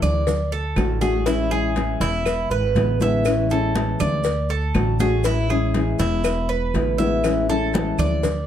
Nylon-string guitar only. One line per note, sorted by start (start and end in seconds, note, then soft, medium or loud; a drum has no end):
0.00 0.26 E3 medium
0.00 0.26 G#3 medium
0.00 0.26 C#4 medium
0.00 0.27 E4 medium
0.27 muted nylon-string guitar stroke medium
0.76 1.00 D3 soft
0.76 1.01 A3 soft
0.76 1.01 D4 medium
0.76 1.00 F#4 medium
1.01 1.26 A3 medium
1.01 1.26 D4 medium
1.01 1.25 F#4 medium
1.26 1.50 E3 medium
1.26 1.50 G#3 medium
1.26 1.51 C#4 medium
1.26 1.50 E4 medium
1.51 1.75 G#3 medium
1.51 1.75 C#4 medium
1.51 1.75 E4 medium
1.75 2.25 E3 medium
1.75 2.25 G#3 medium
1.75 2.25 C#4 medium
1.75 2.25 E4 medium
2.25 muted nylon-string guitar stroke medium
2.76 3.00 D3 soft
2.76 3.00 G#3 soft
2.76 3.00 B3 medium
2.76 3.00 E4 medium
3.01 3.26 D3 medium
3.01 3.25 G#3 medium
3.01 3.25 B3 medium
3.01 3.25 E4 medium
3.26 3.50 E3 medium
3.26 3.50 G#3 medium
3.26 3.50 C#4 medium
3.26 3.50 E4 medium
3.51 3.75 G#3 medium
3.51 3.75 C#4 medium
3.51 3.75 E4 medium
3.76 4.24 E3 soft
3.76 4.25 G#3 medium
3.76 4.25 C#4 medium
3.76 4.25 E4 medium
4.26 muted nylon-string guitar stroke medium
4.75 4.99 D3 soft
4.75 4.99 A3 medium
4.75 4.99 D4 medium
4.75 4.99 F#4 medium
5.00 5.24 A3 medium
5.00 5.24 D4 medium
5.00 5.24 F#4 medium
5.25 5.49 E3 medium
5.25 5.49 G#3 medium
5.25 5.49 C#4 medium
5.25 5.49 E4 medium
5.50 5.75 G#3 medium
5.50 5.74 C#4 medium
5.50 5.74 E4 medium
5.75 6.23 E3 soft
5.75 6.24 G#3 medium
5.75 6.24 C#4 medium
5.75 6.24 E4 medium
6.24 muted nylon-string guitar stroke medium
6.74 6.98 D3 medium
6.74 6.98 G#3 soft
6.74 6.99 B3 medium
6.74 6.98 E4 medium
7.00 7.24 D3 medium
7.00 7.23 G#3 medium
7.00 7.23 B3 medium
7.00 7.23 E4 medium
7.25 7.48 E3 medium
7.25 7.48 G#3 medium
7.25 7.49 C#4 medium
7.25 7.48 E4 medium
7.49 7.73 G#3 medium
7.49 7.73 C#4 medium
7.49 7.73 E4 medium
7.74 8.23 E3 medium
7.74 8.23 G#3 medium
7.74 8.23 C#4 medium
7.74 8.23 E4 medium
8.24 muted nylon-string guitar stroke medium